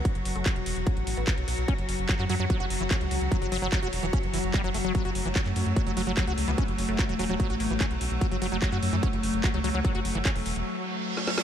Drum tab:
HH |xxoxxxoxxxoxxxox|xxoxxxo-xxoxxxox|xxoxxxoxxxoxxxox|xxoxxxoxxxoxxxox|
CP |----x-------x---|----xx------x---|----x-------x---|----xx------x---|
SD |----------------|----------------|----------------|----------------|
BD |o---o---o---o---|o---o---o---o---|o---o---o---o---|o---o---o---o---|

HH |xxoxxxoxxxoxxxox|xxoxxxoxxxoxxxox|xxo-xoox--------|
CP |----x-------x---|----xx------x---|----x-----------|
SD |----------------|----------------|-------------ooo|
BD |o---o---o---o---|o---o---o---o---|o---o-----------|